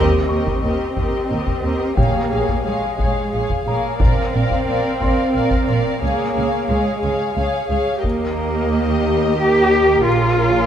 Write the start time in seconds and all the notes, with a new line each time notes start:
Already playing: D#2 C4 G4 A#4 D#5
0.28 D#2 G4 A#4 D#5 C#6
0.46 taiko
0.62 D#2 G4 A#4 D#5
0.96 D#2 G4 A#4 D#5, taiko
1.29 D#2 G4 A#4 D#5
1.47 taiko
1.63 D#2 G4 A#4 D#5
1.97 A#1 A#3 G4 G#4 C#5 F5 G5, taiko
2.31 A#1 G#4 C#5 F5
2.48 taiko
2.64 A#1 G#3 G#4 C#5 F5
2.98 A#1 G#4 C#5 F5, taiko
3.32 A#1 G#4 C#5 F5
3.50 taiko
3.65 A#1 A#3 G#4 C#5 F5 A#5
3.98 A#1 C4 A#4 D5 F5, taiko
4.33 A#1 A#4 D5 F5
4.51 taiko
4.67 A#1 A#4 D5 F5
5.00 A#1 A#4 D5 F5 C6, taiko
5.33 A#1 A#4 D5 F5
5.51 taiko
5.67 A#1 A#4 D5 F5
6.01 C#2 A#3 G#4 C#5 F5
6.34 C#2 G#4 C#5 F5
6.67 C#2 G#3 G#4 C#5 F5
7.00 C#2 G#4 C#5 F5
7.34 C#2 G#4 C#5 F5
7.68 C#2 G#4 C#5 F5
8.02 D#2 A#3 G4 A#4 D#5, taiko
9.39 G4
10.06 A#1 F4 G#4 C#5